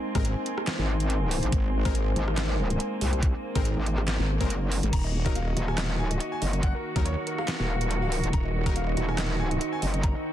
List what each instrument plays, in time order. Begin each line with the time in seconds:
Already playing: string section G#3 A#3 C4, ambient pad D#4 C5 G#5 A#5
0.15 wobble bass G#1, supersaw synth G#3 C4 A#4, kick, cross-stick, closed hi-hat
0.25 closed hi-hat
0.46 closed hi-hat
0.58 cross-stick
0.67 snare, clap, closed hi-hat
0.79 wobble bass G#1
1.00 closed hi-hat
1.10 closed hi-hat
1.31 open hi-hat
1.43 wobble bass G#1, closed hi-hat
1.52 wobble bass G#1, kick, closed hi-hat
1.85 supersaw synth G#3 C4 A#4, kick, cross-stick, closed hi-hat
1.95 closed hi-hat
2.16 wobble bass G#1, closed hi-hat
2.28 cross-stick
2.37 snare, clap, closed hi-hat
2.70 closed hi-hat
2.80 closed hi-hat
3.01 wobble bass C2, open hi-hat
3.13 closed hi-hat
3.23 kick, closed hi-hat
3.55 wobble bass G#1, supersaw synth G#3 C4 A#4, kick, cross-stick, closed hi-hat
3.65 closed hi-hat
3.77 wobble bass G#1
3.86 closed hi-hat
3.98 cross-stick
4.08 snare, clap, closed hi-hat
4.19 wobble bass G#1
4.41 wobble bass F#1, supersaw synth G#3 C4 A#4, kick, closed hi-hat
4.50 closed hi-hat
4.72 open hi-hat
4.83 wobble bass G#1, closed hi-hat
4.93 wobble bass D#1, string section D#3 F#4, ambient pad D#4, grand piano A#5, kick, closed hi-hat, crash
5.04 grand piano D#5
5.21 ambient pad F#5
5.26 supersaw synth F#3 D#4 A#4, ambient pad A#4, grand piano D#5, kick, cross-stick, closed hi-hat
5.35 grand piano F5, ambient pad A#5, closed hi-hat
5.47 grand piano D#5
5.57 wobble bass D#1, grand piano D#5, closed hi-hat
5.68 grand piano G#5, cross-stick
5.78 grand piano D#5, snare, clap, closed hi-hat
5.89 grand piano D#5
5.99 wobble bass D1, grand piano G#5
6.11 grand piano D#5, closed hi-hat
6.20 grand piano D#5, closed hi-hat
6.32 grand piano G#5
6.42 wobble bass F#1, grand piano D#5, open hi-hat
6.53 grand piano D#5, closed hi-hat
6.63 grand piano F#5, kick, closed hi-hat
6.75 grand piano A#4
6.96 wobble bass D#2, supersaw synth F#3 D#4 A#4, grand piano A#4, kick, cross-stick, closed hi-hat
7.05 grand piano C#5, closed hi-hat
7.17 grand piano A#4
7.27 grand piano A#4, closed hi-hat
7.38 grand piano F5, cross-stick
7.48 grand piano A#4, snare, clap, closed hi-hat
7.60 wobble bass D#1, grand piano A#4
7.69 grand piano F5
7.81 grand piano A#4, closed hi-hat
7.91 grand piano A#4, closed hi-hat
8.02 grand piano F5
8.12 grand piano A#4, open hi-hat
8.23 wobble bass D#1, grand piano A#4, closed hi-hat
8.33 wobble bass D#1, string section C4, grand piano A#5, kick, closed hi-hat
8.45 grand piano D#5
8.66 supersaw synth F#3 D#4 A#4, grand piano D#5, kick, cross-stick, closed hi-hat
8.76 grand piano F5, closed hi-hat
8.87 grand piano D#5
8.97 wobble bass D#1, grand piano D#5, closed hi-hat
9.09 grand piano G#5, cross-stick
9.18 grand piano D#5, snare, clap, closed hi-hat
9.30 grand piano D#5
9.40 grand piano G#5
9.51 grand piano D#5, closed hi-hat
9.61 grand piano D#5, closed hi-hat
9.72 grand piano G#5
9.82 wobble bass F#1, grand piano D#5, open hi-hat
9.94 grand piano D#5, closed hi-hat
10.03 grand piano A#5, kick, closed hi-hat
10.15 grand piano D#5